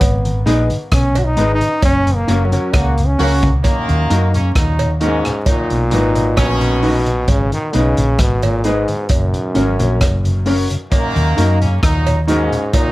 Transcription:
Already playing: B3
0.01 G#1, kick, closed hi-hat, cowbell
0.25 G#2 D#3, closed hi-hat
0.46 A#1 G#3 B3 D#4 G#4 B4 D#5, closed hi-hat
0.70 G#2 D#3, closed hi-hat
0.92 B1 C#4, kick, cross-stick, closed hi-hat
1.15 G#2 D#3 F#4, closed hi-hat, cowbell
1.24 D#4
1.37 G#1 G#3 B3 D#4 G#4 B4 D#5, closed hi-hat
1.55 D#4
1.61 G#2 D#3 B4 D#5, closed hi-hat
1.82 F#1 C#4, kick, closed hi-hat, cowbell
2.06 F#2 C#3, closed hi-hat
2.15 A#3
2.27 F#1 F#3 A#3 C#4 F#4 A#4 C#5, closed hi-hat
2.45 F#3
2.52 F#2 C#3 C#4 F#4 A#4 C#5, closed hi-hat
2.73 C#2 C#3 A#3 F#4, kick, cross-stick, closed hi-hat, cowbell
2.97 F#2 C#3, closed hi-hat
3.06 C#4
3.19 C#2 C#3 F#3 A#3 C#4 F#4 A#4 C#5, open hi-hat
3.43 F#2 C#3, kick, closed hi-hat
3.64 F#2 D#3 A#3, kick, closed hi-hat, cowbell
3.88 D#2 A#2, closed hi-hat
4.10 F#2 F#3 A#3 D#4 F#4 A#4 D#5, closed hi-hat
4.34 D#2 A#2 C#3 A#3 C#4, closed hi-hat
4.55 D#2 A#2 F#3 D#4, kick, cross-stick, closed hi-hat
4.79 D#2 A#2, closed hi-hat, cowbell
5.00 G#2 C#3 F#3 A#3 C#4 D#4 F#4 A#4 D#5, closed hi-hat
5.25 D#2 A#2 A#4 D#5, cross-stick, closed hi-hat
5.46 A#2 D#3 F#3 D#4, kick, closed hi-hat, cowbell
5.70 B1 B2, closed hi-hat
5.91 G#1 D#3 F#3 B3 D#4 F#4 B4 D#5, closed hi-hat
6.15 B2 D#4 F#4 B4 D#5, closed hi-hat
6.37 A#1 F#2 B2 D#3 C#4, kick, cross-stick, closed hi-hat, cowbell
6.61 B2, closed hi-hat
6.82 F#3 B3 D#4 F#4 B4 D#5, open hi-hat
7.06 B2, closed hi-hat
7.28 G#1 C#3, kick, closed hi-hat, cowbell
7.51 G#2 D#3, closed hi-hat
7.73 B1 C#3 G#3 B3 D#4 G#4 B4 D#5, closed hi-hat
7.97 A#1 G#2 D#3, closed hi-hat
8.19 G#1 B2, kick, cross-stick, closed hi-hat
8.42 G#2 A#2 D#3, closed hi-hat, cowbell
8.64 G#2 G#3 B3 D#4 G#4 B4 D#5, closed hi-hat
8.88 G#2 D#3 B4 D#5, closed hi-hat
9.09 F#1 F#2, kick, closed hi-hat, cowbell
9.33 F#2 C#3, closed hi-hat
9.55 G#1 F#3 A#3 C#4 F#4 A#4 C#5, closed hi-hat
9.79 A#1 F#2 C#3 C#4 F#4 A#4 C#5, closed hi-hat
10.01 F#1, kick, cross-stick, closed hi-hat, cowbell
10.25 F#2 C#3, closed hi-hat
10.46 F#3 A#3 C#4 F#4 A#4 C#5, open hi-hat
10.70 F#2 C#3, closed hi-hat
10.92 F#2 D#3 A#3, kick, closed hi-hat, cowbell
11.16 D#2 A#2, closed hi-hat
11.37 F#2 F#3 A#3 D#4 F#4 A#4 D#5, closed hi-hat
11.61 D#2 A#2 C#3 A#3 C#4, closed hi-hat
11.82 D#2 A#2 F#3 D#4, kick, cross-stick, closed hi-hat
12.06 D#2 A#2, closed hi-hat, cowbell
12.27 G#2 C#3 F#3 A#3 C#4 D#4 F#4 A#4 D#5, closed hi-hat
12.52 D#2 A#2 A#4 D#5, closed hi-hat
12.73 A#2 D#3 F#3 D#4, kick, closed hi-hat, cowbell

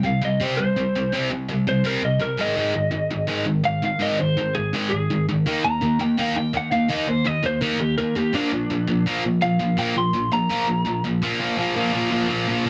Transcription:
0.03 C3 G3 F5
0.22 C3 G3 D#5
0.40 C3 G3 C4 C5
0.57 C3 G3 C5
0.76 C3 G3
0.95 C3 G3
1.12 C3 G3 C4
1.30 C3 G3
1.49 C3 G3
1.67 C3 G3 C5
1.84 C3 G3 C4 A#4
2.03 C3 G3 D#5
2.20 C3 G3 A#4
2.38 G#2 D#3 G#3 D#5
2.56 G#2 D#3 G#3
2.74 G#2 D#3
2.91 G#2 D#3
3.11 G#2 D#3
3.27 G#2 D#3 G#3
3.46 G#2 D#3
3.64 G#2 D#3 F5
3.82 G#2 D#3 F5
3.99 G#2 D#3 G#3 D#5
4.19 G#2 D#3 C5
4.37 G#2 D#3
4.55 G#2 D#3 G#4
4.73 G#2 D#3 G#3
4.90 G#2 D#3 G#4
5.10 G#2 D#3
5.29 G#2 D#3
5.46 D#3 A#3 D#4
5.64 D#3 A#3 A#5
5.81 D#3 A#3
5.99 D#3 A#3 G5
6.17 D#3 A#3 D#4 F5
6.36 D#3 A#3 G5
6.53 D#3 A#3 F#5
6.71 D#3 A#3 F5
6.88 D#3 A#3 D#4 D#5
7.07 D#3 A#3 C5
7.25 D#3 A#3 D#5
7.43 D#3 A#3 C5
7.61 D#3 A#3 D#4 A#4
7.80 D#3 A#3 G4
7.98 D#3 A#3 A#4
8.16 D#3 A#3 G4
8.33 A#2 F3 A#3 D4
8.52 A#2 F3
8.70 A#2 F3
8.88 A#2 F3
9.06 A#2 F3 A#3
9.24 A#2 F3
9.41 A#2 F3 F5
9.59 A#2 F3
9.77 A#2 F3 A#3 G5
9.96 A#2 F3 C6
10.14 A#2 F3
10.32 A#2 F3 A#5
10.50 A#2 F3 A#3
10.68 A#2 F3
10.85 A#2 F3
11.04 A#2 F3
11.22 A#2 F3 A#3
11.39 A#2 F3 A#3
11.57 A#2 F3 A#3
11.75 A#2 F3 A#3
11.93 A#2 F3 A#3
12.11 A#2 F3 A#3
12.28 A#2 F3 A#3
12.48 A#2 F3 A#3
12.65 A#2 F3 A#3

